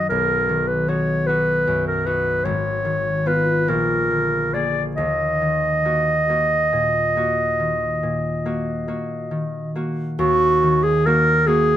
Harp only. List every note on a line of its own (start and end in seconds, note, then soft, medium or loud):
0.00 0.13 F#2 soft
0.00 0.13 D#3 soft
0.00 2.50 F#3 soft
0.00 0.87 D#4 soft
0.00 0.87 F#4 soft
0.10 2.49 B1 soft
0.49 2.49 D#3 soft
0.88 1.27 D#4 soft
0.88 1.28 F#4 soft
1.28 2.05 D#4 soft
1.28 2.06 F#4 soft
1.67 2.49 F#2 soft
2.06 3.71 D#4 soft
2.06 2.49 F#4 soft
2.45 3.71 G#1 soft
2.85 3.71 D#3 soft
3.26 3.72 B3 soft
3.26 5.00 F4 soft
3.68 5.00 A#1 soft
4.11 5.01 D3 soft
4.54 5.84 A#3 soft
4.54 5.01 G#4 soft
4.98 8.88 D#2 soft
5.42 7.58 D#3 soft
5.85 6.28 A#3 soft
5.85 6.28 F#4 soft
6.29 7.16 A#3 soft
6.29 7.16 F#4 soft
6.73 8.02 A#2 soft
7.16 8.45 A#3 soft
7.16 8.44 F#4 soft
7.60 9.30 D#3 soft
8.03 10.22 A#2 soft
8.45 8.87 A#3 soft
8.45 8.87 F#4 soft
8.88 9.74 A#3 soft
8.88 9.75 F#4 soft
9.31 10.23 D#3 soft
9.75 11.05 A#3 soft
9.75 11.06 F#4 soft
10.19 11.77 D#2 medium
10.63 11.77 D#3 soft
11.06 11.46 A#3 soft
11.06 11.47 F#4 soft
11.47 11.77 A#3 soft
11.47 11.77 F#4 medium